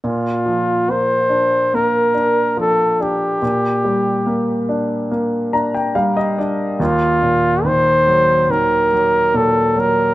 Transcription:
X:1
M:4/4
L:1/16
Q:1/4=71
K:Bb
V:1 name="Flugelhorn"
F4 c4 B4 A2 G2- | G6 z8 z2 | F4 c4 B4 A2 B2 |]
V:2 name="Grand piano"
z16 | z8 z2 b g f e d2 | z16 |]
V:3 name="Grand piano" clef=bass
B,,2 F,2 B,2 D2 B,2 D2 F,2 D2 | B,,2 G,2 B,2 D2 B,2 D2 G,2 D2 | E,,2 B,,2 E,2 _G,2 E,2 G,2 B,,2 G,2 |]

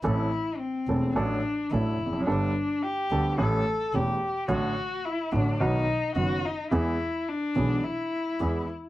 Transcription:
X:1
M:4/4
L:1/16
Q:1/4=108
K:Ador
V:1 name="Cello"
E4 C4 D4 E4 | D4 G4 A4 G4 | F4 E2 D2 ^D4 F2 D2 | E4 D4 E6 z2 |]
V:2 name="Upright piano" clef=bass
[A,,,A,,E,A,CA]2 z4 [E,,,E,,E,A,CA]2 [A,,,A,,F,A,DA]2 z2 [A,,,A,,F,A,DA]2 z/2 E,,/2 =F,,/2 ^F,,/2 | [G,,,G,,G,B,DA]2 z4 [D,,D,G,B,DA]2 [A,,,A,,E,A,^CG]2 z2 [E,,,E,,E,A,CG]2 z2 | [A,,,A,,D,F,A,F]2 z4 [A,,,A,,D,F,A,F]2 [B,,,B,,^D,F,B,F]2 z2 [F,,,F,,D,F,B,F]2 z2 | [E,,E,^G,B,^G]2 z4 [B,,,B,,E,G,B,G]2 z4 [E,,E,G,B,G]2 z2 |]
V:3 name="Double bass" clef=bass
A,,,2 z4 E,,,2 A,,,2 z2 A,,,2 =F,,,2 | G,,,2 z4 D,,2 A,,,2 z2 E,,,2 z2 | A,,,2 z4 A,,,2 B,,,2 z2 F,,,2 z2 | E,,2 z4 B,,,2 z4 E,,2 z2 |]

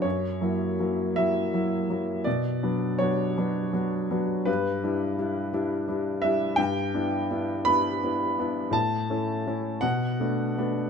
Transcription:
X:1
M:6/8
L:1/8
Q:3/8=55
K:Glyd
V:1 name="Upright piano"
c3 e3 | d2 c4 | B3 z2 e | [K:Edor] g3 b3 |
a3 f3 |]
V:2 name="Upright piano"
F,, [F,^A,E] [F,A,E] [F,A,E] [F,A,E] [F,A,E] | B,, [F,B,D] [F,B,D] [F,B,D] [F,B,D] [F,B,D] | G,, [G,DE] [G,DE] [G,DE] [G,DE] [G,DE] | [K:Edor] G,, [B,DE] [B,DE] [B,DE] [B,DE] [B,DE] |
A,, [A,CE] [A,CE] B,, [A,B,D] [A,B,D] |]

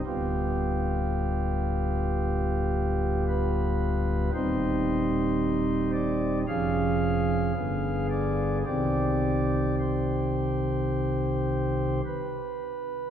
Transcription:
X:1
M:4/4
L:1/8
Q:1/4=56
K:Cm
V:1 name="Pipe organ"
G6 =B2 | c3 d f3 d | d2 c4 =B2 |]
V:2 name="Pipe organ" clef=bass
[D,,,D,,G,=B,F]8 | [E,,,E,,G,CE]4 [F,,,F,,F,_DA]2 [G,,,G,,=D,=B,A]2 | [C,,C,E,CG]6 z2 |]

